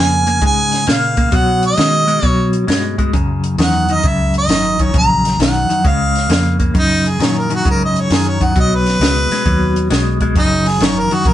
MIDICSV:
0, 0, Header, 1, 5, 480
1, 0, Start_track
1, 0, Key_signature, 6, "major"
1, 0, Tempo, 451467
1, 1408, Time_signature, 4, 2, 24, 8
1, 12051, End_track
2, 0, Start_track
2, 0, Title_t, "Harmonica"
2, 0, Program_c, 0, 22
2, 0, Note_on_c, 0, 80, 103
2, 462, Note_off_c, 0, 80, 0
2, 485, Note_on_c, 0, 80, 100
2, 914, Note_off_c, 0, 80, 0
2, 984, Note_on_c, 0, 77, 87
2, 1447, Note_on_c, 0, 78, 98
2, 1463, Note_off_c, 0, 77, 0
2, 1749, Note_off_c, 0, 78, 0
2, 1766, Note_on_c, 0, 75, 92
2, 2404, Note_off_c, 0, 75, 0
2, 2404, Note_on_c, 0, 73, 92
2, 2667, Note_off_c, 0, 73, 0
2, 3849, Note_on_c, 0, 78, 88
2, 4185, Note_on_c, 0, 75, 88
2, 4201, Note_off_c, 0, 78, 0
2, 4326, Note_on_c, 0, 76, 98
2, 4342, Note_off_c, 0, 75, 0
2, 4631, Note_off_c, 0, 76, 0
2, 4658, Note_on_c, 0, 75, 95
2, 5128, Note_on_c, 0, 73, 88
2, 5144, Note_off_c, 0, 75, 0
2, 5270, Note_off_c, 0, 73, 0
2, 5295, Note_on_c, 0, 82, 109
2, 5722, Note_off_c, 0, 82, 0
2, 5766, Note_on_c, 0, 78, 84
2, 6198, Note_off_c, 0, 78, 0
2, 6238, Note_on_c, 0, 77, 92
2, 6986, Note_off_c, 0, 77, 0
2, 7199, Note_on_c, 0, 63, 93
2, 7541, Note_on_c, 0, 68, 84
2, 7557, Note_off_c, 0, 63, 0
2, 7704, Note_on_c, 0, 73, 82
2, 7720, Note_off_c, 0, 68, 0
2, 7854, Note_on_c, 0, 70, 80
2, 7870, Note_off_c, 0, 73, 0
2, 7990, Note_off_c, 0, 70, 0
2, 8021, Note_on_c, 0, 66, 82
2, 8154, Note_off_c, 0, 66, 0
2, 8189, Note_on_c, 0, 70, 80
2, 8318, Note_off_c, 0, 70, 0
2, 8347, Note_on_c, 0, 75, 66
2, 8506, Note_on_c, 0, 73, 76
2, 8522, Note_off_c, 0, 75, 0
2, 8657, Note_on_c, 0, 68, 83
2, 8673, Note_off_c, 0, 73, 0
2, 8815, Note_on_c, 0, 73, 77
2, 8831, Note_off_c, 0, 68, 0
2, 8976, Note_on_c, 0, 78, 78
2, 8992, Note_off_c, 0, 73, 0
2, 9111, Note_off_c, 0, 78, 0
2, 9141, Note_on_c, 0, 75, 82
2, 9304, Note_on_c, 0, 71, 93
2, 9320, Note_off_c, 0, 75, 0
2, 10675, Note_off_c, 0, 71, 0
2, 11040, Note_on_c, 0, 63, 86
2, 11356, Note_on_c, 0, 68, 81
2, 11372, Note_off_c, 0, 63, 0
2, 11527, Note_on_c, 0, 73, 91
2, 11543, Note_off_c, 0, 68, 0
2, 11685, Note_on_c, 0, 70, 90
2, 11701, Note_off_c, 0, 73, 0
2, 11835, Note_on_c, 0, 66, 82
2, 11851, Note_off_c, 0, 70, 0
2, 11992, Note_on_c, 0, 70, 92
2, 12008, Note_off_c, 0, 66, 0
2, 12051, Note_off_c, 0, 70, 0
2, 12051, End_track
3, 0, Start_track
3, 0, Title_t, "Clean electric guitar"
3, 0, Program_c, 1, 27
3, 0, Note_on_c, 1, 49, 78
3, 0, Note_on_c, 1, 58, 80
3, 253, Note_off_c, 1, 49, 0
3, 256, Note_off_c, 1, 58, 0
3, 283, Note_on_c, 1, 49, 70
3, 291, Note_on_c, 1, 58, 84
3, 428, Note_off_c, 1, 49, 0
3, 432, Note_off_c, 1, 58, 0
3, 444, Note_on_c, 1, 49, 79
3, 449, Note_on_c, 1, 56, 88
3, 894, Note_off_c, 1, 49, 0
3, 897, Note_off_c, 1, 56, 0
3, 926, Note_on_c, 1, 49, 80
3, 930, Note_on_c, 1, 58, 80
3, 1216, Note_off_c, 1, 49, 0
3, 1218, Note_off_c, 1, 58, 0
3, 1244, Note_on_c, 1, 49, 67
3, 1250, Note_on_c, 1, 58, 84
3, 1389, Note_off_c, 1, 49, 0
3, 1392, Note_off_c, 1, 58, 0
3, 1404, Note_on_c, 1, 47, 87
3, 1413, Note_on_c, 1, 54, 93
3, 1855, Note_off_c, 1, 47, 0
3, 1859, Note_off_c, 1, 54, 0
3, 1885, Note_on_c, 1, 47, 76
3, 1888, Note_on_c, 1, 56, 86
3, 2176, Note_off_c, 1, 47, 0
3, 2178, Note_off_c, 1, 56, 0
3, 2204, Note_on_c, 1, 47, 76
3, 2209, Note_on_c, 1, 56, 84
3, 2350, Note_off_c, 1, 47, 0
3, 2352, Note_off_c, 1, 56, 0
3, 2364, Note_on_c, 1, 47, 78
3, 2371, Note_on_c, 1, 54, 91
3, 2815, Note_off_c, 1, 47, 0
3, 2819, Note_off_c, 1, 54, 0
3, 2843, Note_on_c, 1, 47, 67
3, 2850, Note_on_c, 1, 56, 84
3, 3136, Note_off_c, 1, 47, 0
3, 3140, Note_off_c, 1, 56, 0
3, 3170, Note_on_c, 1, 47, 72
3, 3175, Note_on_c, 1, 56, 80
3, 3313, Note_off_c, 1, 47, 0
3, 3316, Note_off_c, 1, 56, 0
3, 3332, Note_on_c, 1, 42, 80
3, 3336, Note_on_c, 1, 49, 91
3, 3780, Note_off_c, 1, 42, 0
3, 3782, Note_off_c, 1, 49, 0
3, 3811, Note_on_c, 1, 42, 78
3, 3814, Note_on_c, 1, 51, 95
3, 4101, Note_off_c, 1, 42, 0
3, 4102, Note_off_c, 1, 51, 0
3, 4141, Note_on_c, 1, 42, 67
3, 4145, Note_on_c, 1, 51, 84
3, 4280, Note_off_c, 1, 42, 0
3, 4282, Note_off_c, 1, 51, 0
3, 4298, Note_on_c, 1, 42, 78
3, 4301, Note_on_c, 1, 49, 83
3, 4744, Note_off_c, 1, 42, 0
3, 4745, Note_off_c, 1, 49, 0
3, 4775, Note_on_c, 1, 42, 72
3, 4783, Note_on_c, 1, 51, 88
3, 5063, Note_off_c, 1, 42, 0
3, 5067, Note_off_c, 1, 51, 0
3, 5097, Note_on_c, 1, 42, 81
3, 5104, Note_on_c, 1, 51, 82
3, 5236, Note_off_c, 1, 42, 0
3, 5242, Note_off_c, 1, 51, 0
3, 5249, Note_on_c, 1, 42, 83
3, 5253, Note_on_c, 1, 49, 86
3, 5699, Note_off_c, 1, 42, 0
3, 5701, Note_off_c, 1, 49, 0
3, 5733, Note_on_c, 1, 42, 76
3, 5740, Note_on_c, 1, 51, 87
3, 6023, Note_off_c, 1, 42, 0
3, 6026, Note_off_c, 1, 51, 0
3, 6052, Note_on_c, 1, 42, 70
3, 6054, Note_on_c, 1, 51, 78
3, 6196, Note_off_c, 1, 42, 0
3, 6197, Note_off_c, 1, 51, 0
3, 6213, Note_on_c, 1, 49, 85
3, 6216, Note_on_c, 1, 56, 87
3, 6662, Note_off_c, 1, 49, 0
3, 6664, Note_off_c, 1, 56, 0
3, 6693, Note_on_c, 1, 49, 73
3, 6698, Note_on_c, 1, 58, 77
3, 6983, Note_off_c, 1, 49, 0
3, 6986, Note_off_c, 1, 58, 0
3, 7009, Note_on_c, 1, 49, 66
3, 7017, Note_on_c, 1, 58, 73
3, 7155, Note_off_c, 1, 49, 0
3, 7159, Note_off_c, 1, 58, 0
3, 7166, Note_on_c, 1, 42, 82
3, 7173, Note_on_c, 1, 49, 88
3, 7619, Note_off_c, 1, 42, 0
3, 7623, Note_off_c, 1, 49, 0
3, 7650, Note_on_c, 1, 42, 81
3, 7652, Note_on_c, 1, 51, 80
3, 7942, Note_off_c, 1, 42, 0
3, 7943, Note_off_c, 1, 51, 0
3, 7974, Note_on_c, 1, 42, 73
3, 7979, Note_on_c, 1, 51, 81
3, 8118, Note_off_c, 1, 42, 0
3, 8120, Note_off_c, 1, 51, 0
3, 8136, Note_on_c, 1, 42, 87
3, 8141, Note_on_c, 1, 49, 100
3, 8584, Note_off_c, 1, 42, 0
3, 8586, Note_off_c, 1, 49, 0
3, 8616, Note_on_c, 1, 42, 82
3, 8619, Note_on_c, 1, 51, 73
3, 8905, Note_off_c, 1, 42, 0
3, 8907, Note_off_c, 1, 51, 0
3, 8936, Note_on_c, 1, 42, 72
3, 8941, Note_on_c, 1, 51, 81
3, 9079, Note_off_c, 1, 42, 0
3, 9081, Note_off_c, 1, 51, 0
3, 9097, Note_on_c, 1, 47, 78
3, 9103, Note_on_c, 1, 54, 86
3, 9544, Note_off_c, 1, 47, 0
3, 9547, Note_off_c, 1, 54, 0
3, 9581, Note_on_c, 1, 47, 77
3, 9585, Note_on_c, 1, 56, 82
3, 9867, Note_off_c, 1, 47, 0
3, 9869, Note_off_c, 1, 56, 0
3, 9902, Note_on_c, 1, 47, 67
3, 9908, Note_on_c, 1, 56, 81
3, 10041, Note_off_c, 1, 47, 0
3, 10044, Note_off_c, 1, 56, 0
3, 10052, Note_on_c, 1, 47, 84
3, 10059, Note_on_c, 1, 54, 83
3, 10501, Note_off_c, 1, 47, 0
3, 10504, Note_off_c, 1, 54, 0
3, 10530, Note_on_c, 1, 47, 86
3, 10534, Note_on_c, 1, 56, 81
3, 10820, Note_off_c, 1, 47, 0
3, 10822, Note_off_c, 1, 56, 0
3, 10859, Note_on_c, 1, 47, 80
3, 10863, Note_on_c, 1, 56, 83
3, 10999, Note_off_c, 1, 47, 0
3, 11001, Note_off_c, 1, 56, 0
3, 11020, Note_on_c, 1, 42, 85
3, 11025, Note_on_c, 1, 49, 95
3, 11463, Note_off_c, 1, 42, 0
3, 11466, Note_off_c, 1, 49, 0
3, 11489, Note_on_c, 1, 42, 80
3, 11495, Note_on_c, 1, 51, 91
3, 11778, Note_off_c, 1, 42, 0
3, 11781, Note_off_c, 1, 51, 0
3, 11815, Note_on_c, 1, 42, 77
3, 11823, Note_on_c, 1, 51, 82
3, 11955, Note_off_c, 1, 42, 0
3, 11959, Note_off_c, 1, 51, 0
3, 11970, Note_on_c, 1, 42, 84
3, 11974, Note_on_c, 1, 49, 89
3, 12051, Note_off_c, 1, 42, 0
3, 12051, Note_off_c, 1, 49, 0
3, 12051, End_track
4, 0, Start_track
4, 0, Title_t, "Fingered electric bass"
4, 0, Program_c, 2, 33
4, 0, Note_on_c, 2, 41, 86
4, 433, Note_off_c, 2, 41, 0
4, 444, Note_on_c, 2, 44, 83
4, 911, Note_off_c, 2, 44, 0
4, 931, Note_on_c, 2, 46, 95
4, 1395, Note_off_c, 2, 46, 0
4, 1404, Note_on_c, 2, 47, 88
4, 1872, Note_off_c, 2, 47, 0
4, 1891, Note_on_c, 2, 51, 93
4, 2356, Note_off_c, 2, 51, 0
4, 2368, Note_on_c, 2, 47, 82
4, 2834, Note_off_c, 2, 47, 0
4, 2850, Note_on_c, 2, 43, 91
4, 3316, Note_off_c, 2, 43, 0
4, 3331, Note_on_c, 2, 42, 86
4, 3797, Note_off_c, 2, 42, 0
4, 3805, Note_on_c, 2, 40, 87
4, 4274, Note_off_c, 2, 40, 0
4, 4290, Note_on_c, 2, 37, 83
4, 4757, Note_off_c, 2, 37, 0
4, 4764, Note_on_c, 2, 32, 91
4, 5234, Note_off_c, 2, 32, 0
4, 5253, Note_on_c, 2, 34, 80
4, 5719, Note_off_c, 2, 34, 0
4, 5728, Note_on_c, 2, 35, 88
4, 6030, Note_off_c, 2, 35, 0
4, 6216, Note_on_c, 2, 37, 79
4, 6681, Note_off_c, 2, 37, 0
4, 6688, Note_on_c, 2, 41, 91
4, 7157, Note_off_c, 2, 41, 0
4, 7175, Note_on_c, 2, 42, 78
4, 7641, Note_off_c, 2, 42, 0
4, 7650, Note_on_c, 2, 46, 85
4, 8118, Note_off_c, 2, 46, 0
4, 8132, Note_on_c, 2, 44, 84
4, 8599, Note_off_c, 2, 44, 0
4, 8609, Note_on_c, 2, 42, 93
4, 9078, Note_off_c, 2, 42, 0
4, 9095, Note_on_c, 2, 35, 80
4, 9560, Note_off_c, 2, 35, 0
4, 9565, Note_on_c, 2, 37, 85
4, 9869, Note_off_c, 2, 37, 0
4, 10055, Note_on_c, 2, 39, 87
4, 10519, Note_off_c, 2, 39, 0
4, 10535, Note_on_c, 2, 35, 91
4, 10998, Note_off_c, 2, 35, 0
4, 11010, Note_on_c, 2, 30, 91
4, 11475, Note_off_c, 2, 30, 0
4, 11490, Note_on_c, 2, 32, 89
4, 11788, Note_off_c, 2, 32, 0
4, 11964, Note_on_c, 2, 34, 84
4, 12051, Note_off_c, 2, 34, 0
4, 12051, End_track
5, 0, Start_track
5, 0, Title_t, "Drums"
5, 285, Note_on_c, 9, 42, 58
5, 391, Note_off_c, 9, 42, 0
5, 442, Note_on_c, 9, 42, 70
5, 444, Note_on_c, 9, 36, 103
5, 548, Note_off_c, 9, 42, 0
5, 551, Note_off_c, 9, 36, 0
5, 766, Note_on_c, 9, 42, 54
5, 785, Note_on_c, 9, 38, 28
5, 872, Note_off_c, 9, 42, 0
5, 891, Note_off_c, 9, 38, 0
5, 923, Note_on_c, 9, 42, 77
5, 942, Note_on_c, 9, 38, 98
5, 1029, Note_off_c, 9, 42, 0
5, 1048, Note_off_c, 9, 38, 0
5, 1245, Note_on_c, 9, 42, 63
5, 1248, Note_on_c, 9, 36, 80
5, 1351, Note_off_c, 9, 42, 0
5, 1354, Note_off_c, 9, 36, 0
5, 1403, Note_on_c, 9, 42, 88
5, 1407, Note_on_c, 9, 36, 121
5, 1509, Note_off_c, 9, 42, 0
5, 1513, Note_off_c, 9, 36, 0
5, 1730, Note_on_c, 9, 42, 64
5, 1837, Note_off_c, 9, 42, 0
5, 1887, Note_on_c, 9, 42, 90
5, 1906, Note_on_c, 9, 38, 108
5, 1993, Note_off_c, 9, 42, 0
5, 2012, Note_off_c, 9, 38, 0
5, 2212, Note_on_c, 9, 42, 65
5, 2318, Note_off_c, 9, 42, 0
5, 2368, Note_on_c, 9, 42, 79
5, 2369, Note_on_c, 9, 36, 93
5, 2474, Note_off_c, 9, 42, 0
5, 2476, Note_off_c, 9, 36, 0
5, 2690, Note_on_c, 9, 42, 52
5, 2796, Note_off_c, 9, 42, 0
5, 2852, Note_on_c, 9, 42, 83
5, 2871, Note_on_c, 9, 38, 102
5, 2958, Note_off_c, 9, 42, 0
5, 2978, Note_off_c, 9, 38, 0
5, 3174, Note_on_c, 9, 36, 68
5, 3175, Note_on_c, 9, 42, 56
5, 3280, Note_off_c, 9, 36, 0
5, 3281, Note_off_c, 9, 42, 0
5, 3332, Note_on_c, 9, 36, 113
5, 3334, Note_on_c, 9, 42, 83
5, 3439, Note_off_c, 9, 36, 0
5, 3440, Note_off_c, 9, 42, 0
5, 3654, Note_on_c, 9, 42, 56
5, 3760, Note_off_c, 9, 42, 0
5, 3812, Note_on_c, 9, 42, 80
5, 3831, Note_on_c, 9, 38, 109
5, 3918, Note_off_c, 9, 42, 0
5, 3937, Note_off_c, 9, 38, 0
5, 4131, Note_on_c, 9, 42, 60
5, 4237, Note_off_c, 9, 42, 0
5, 4289, Note_on_c, 9, 42, 69
5, 4293, Note_on_c, 9, 36, 110
5, 4396, Note_off_c, 9, 42, 0
5, 4399, Note_off_c, 9, 36, 0
5, 4612, Note_on_c, 9, 42, 54
5, 4718, Note_off_c, 9, 42, 0
5, 4770, Note_on_c, 9, 42, 79
5, 4789, Note_on_c, 9, 38, 99
5, 4876, Note_off_c, 9, 42, 0
5, 4896, Note_off_c, 9, 38, 0
5, 5095, Note_on_c, 9, 36, 72
5, 5096, Note_on_c, 9, 42, 64
5, 5202, Note_off_c, 9, 36, 0
5, 5202, Note_off_c, 9, 42, 0
5, 5252, Note_on_c, 9, 42, 91
5, 5254, Note_on_c, 9, 36, 116
5, 5358, Note_off_c, 9, 42, 0
5, 5360, Note_off_c, 9, 36, 0
5, 5583, Note_on_c, 9, 42, 63
5, 5602, Note_on_c, 9, 38, 29
5, 5689, Note_off_c, 9, 42, 0
5, 5709, Note_off_c, 9, 38, 0
5, 5741, Note_on_c, 9, 42, 82
5, 5760, Note_on_c, 9, 38, 114
5, 5848, Note_off_c, 9, 42, 0
5, 5867, Note_off_c, 9, 38, 0
5, 6063, Note_on_c, 9, 42, 63
5, 6169, Note_off_c, 9, 42, 0
5, 6216, Note_on_c, 9, 36, 104
5, 6218, Note_on_c, 9, 42, 79
5, 6322, Note_off_c, 9, 36, 0
5, 6324, Note_off_c, 9, 42, 0
5, 6544, Note_on_c, 9, 42, 55
5, 6563, Note_on_c, 9, 38, 28
5, 6650, Note_off_c, 9, 42, 0
5, 6669, Note_off_c, 9, 38, 0
5, 6695, Note_on_c, 9, 42, 79
5, 6714, Note_on_c, 9, 38, 113
5, 6801, Note_off_c, 9, 42, 0
5, 6820, Note_off_c, 9, 38, 0
5, 7014, Note_on_c, 9, 42, 57
5, 7015, Note_on_c, 9, 36, 75
5, 7120, Note_off_c, 9, 42, 0
5, 7122, Note_off_c, 9, 36, 0
5, 7175, Note_on_c, 9, 36, 122
5, 7175, Note_on_c, 9, 42, 84
5, 7281, Note_off_c, 9, 36, 0
5, 7282, Note_off_c, 9, 42, 0
5, 7504, Note_on_c, 9, 42, 54
5, 7611, Note_off_c, 9, 42, 0
5, 7658, Note_on_c, 9, 42, 79
5, 7677, Note_on_c, 9, 38, 103
5, 7765, Note_off_c, 9, 42, 0
5, 7784, Note_off_c, 9, 38, 0
5, 7977, Note_on_c, 9, 42, 60
5, 8083, Note_off_c, 9, 42, 0
5, 8136, Note_on_c, 9, 36, 101
5, 8137, Note_on_c, 9, 42, 74
5, 8242, Note_off_c, 9, 36, 0
5, 8243, Note_off_c, 9, 42, 0
5, 8463, Note_on_c, 9, 42, 55
5, 8569, Note_off_c, 9, 42, 0
5, 8617, Note_on_c, 9, 42, 82
5, 8636, Note_on_c, 9, 38, 113
5, 8723, Note_off_c, 9, 42, 0
5, 8742, Note_off_c, 9, 38, 0
5, 8938, Note_on_c, 9, 36, 71
5, 8942, Note_on_c, 9, 42, 64
5, 9045, Note_off_c, 9, 36, 0
5, 9048, Note_off_c, 9, 42, 0
5, 9097, Note_on_c, 9, 36, 115
5, 9099, Note_on_c, 9, 42, 89
5, 9204, Note_off_c, 9, 36, 0
5, 9206, Note_off_c, 9, 42, 0
5, 9424, Note_on_c, 9, 42, 62
5, 9443, Note_on_c, 9, 38, 30
5, 9531, Note_off_c, 9, 42, 0
5, 9550, Note_off_c, 9, 38, 0
5, 9581, Note_on_c, 9, 42, 87
5, 9600, Note_on_c, 9, 38, 109
5, 9687, Note_off_c, 9, 42, 0
5, 9706, Note_off_c, 9, 38, 0
5, 9902, Note_on_c, 9, 42, 64
5, 9921, Note_on_c, 9, 38, 31
5, 10008, Note_off_c, 9, 42, 0
5, 10028, Note_off_c, 9, 38, 0
5, 10055, Note_on_c, 9, 36, 100
5, 10055, Note_on_c, 9, 42, 82
5, 10162, Note_off_c, 9, 36, 0
5, 10162, Note_off_c, 9, 42, 0
5, 10379, Note_on_c, 9, 42, 56
5, 10486, Note_off_c, 9, 42, 0
5, 10531, Note_on_c, 9, 42, 86
5, 10550, Note_on_c, 9, 38, 96
5, 10637, Note_off_c, 9, 42, 0
5, 10656, Note_off_c, 9, 38, 0
5, 10851, Note_on_c, 9, 42, 59
5, 10852, Note_on_c, 9, 36, 71
5, 10957, Note_off_c, 9, 42, 0
5, 10959, Note_off_c, 9, 36, 0
5, 11010, Note_on_c, 9, 36, 120
5, 11011, Note_on_c, 9, 42, 85
5, 11116, Note_off_c, 9, 36, 0
5, 11117, Note_off_c, 9, 42, 0
5, 11335, Note_on_c, 9, 42, 52
5, 11354, Note_on_c, 9, 38, 31
5, 11441, Note_off_c, 9, 42, 0
5, 11460, Note_off_c, 9, 38, 0
5, 11488, Note_on_c, 9, 42, 85
5, 11507, Note_on_c, 9, 38, 115
5, 11594, Note_off_c, 9, 42, 0
5, 11613, Note_off_c, 9, 38, 0
5, 11814, Note_on_c, 9, 42, 62
5, 11920, Note_off_c, 9, 42, 0
5, 11964, Note_on_c, 9, 36, 102
5, 11966, Note_on_c, 9, 42, 74
5, 12051, Note_off_c, 9, 36, 0
5, 12051, Note_off_c, 9, 42, 0
5, 12051, End_track
0, 0, End_of_file